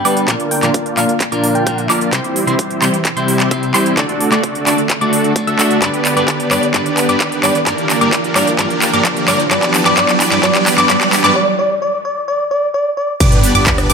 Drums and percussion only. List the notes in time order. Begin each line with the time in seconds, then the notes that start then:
0.05 open hi-hat
0.17 closed hi-hat
0.28 kick, clap, closed hi-hat
0.40 closed hi-hat
0.51 open hi-hat
0.63 clap, closed hi-hat
0.74 kick, closed hi-hat
0.86 closed hi-hat
0.97 clap, open hi-hat
1.09 closed hi-hat
1.20 kick, clap, closed hi-hat
1.32 closed hi-hat
1.44 open hi-hat
1.55 closed hi-hat
1.67 kick, closed hi-hat
1.78 closed hi-hat
1.90 clap, open hi-hat
2.01 closed hi-hat
2.13 kick, clap, closed hi-hat
2.24 closed hi-hat
2.36 open hi-hat
2.48 closed hi-hat
2.59 kick, closed hi-hat
2.71 closed hi-hat
2.82 clap, open hi-hat
2.94 closed hi-hat
3.05 kick, clap, closed hi-hat
3.17 closed hi-hat
3.28 open hi-hat
3.40 clap, closed hi-hat
3.51 kick, closed hi-hat
3.63 closed hi-hat
3.74 clap, open hi-hat
3.86 closed hi-hat
3.97 kick, clap, closed hi-hat
4.09 closed hi-hat
4.21 open hi-hat
4.32 clap, closed hi-hat
4.44 kick, closed hi-hat
4.55 closed hi-hat
4.67 clap, open hi-hat
4.78 closed hi-hat
4.90 kick, clap, closed hi-hat
5.01 closed hi-hat
5.13 open hi-hat
5.24 closed hi-hat
5.36 kick, closed hi-hat
5.47 closed hi-hat
5.59 clap, open hi-hat
5.71 closed hi-hat
5.82 kick, clap, closed hi-hat
5.94 closed hi-hat
6.05 clap, open hi-hat
6.17 closed hi-hat
6.28 kick, clap, closed hi-hat
6.40 closed hi-hat
6.51 clap, open hi-hat
6.63 closed hi-hat
6.74 kick, clap, closed hi-hat
6.86 closed hi-hat
6.97 clap, open hi-hat
7.09 closed hi-hat
7.20 kick, clap, closed hi-hat
7.32 closed hi-hat
7.44 clap, open hi-hat
7.55 closed hi-hat
7.67 kick, clap, closed hi-hat
7.78 closed hi-hat
7.90 clap, open hi-hat
8.01 closed hi-hat
8.13 kick, clap, closed hi-hat
8.24 closed hi-hat
8.36 clap, open hi-hat
8.47 closed hi-hat
8.59 kick, clap, closed hi-hat
8.70 closed hi-hat
8.82 clap, open hi-hat
8.93 closed hi-hat
9.05 kick, clap, closed hi-hat
9.17 closed hi-hat
9.28 clap, open hi-hat
9.40 closed hi-hat
9.51 kick, clap, closed hi-hat
9.63 clap, closed hi-hat
9.74 clap, open hi-hat
9.86 clap, closed hi-hat
9.97 kick, clap, closed hi-hat
10.09 clap, closed hi-hat
10.20 clap, open hi-hat
10.32 clap, closed hi-hat
10.43 kick, clap, closed hi-hat
10.55 clap, closed hi-hat
10.67 clap, open hi-hat
10.78 clap, closed hi-hat
10.90 kick, clap, closed hi-hat
11.01 clap, closed hi-hat
11.13 clap, open hi-hat
11.24 clap, closed hi-hat
13.20 kick, closed hi-hat, crash, shaker
13.32 closed hi-hat, shaker
13.44 open hi-hat, shaker
13.55 closed hi-hat, shaker
13.66 kick, clap, closed hi-hat, shaker
13.78 cross-stick, closed hi-hat, shaker
13.90 open hi-hat, shaker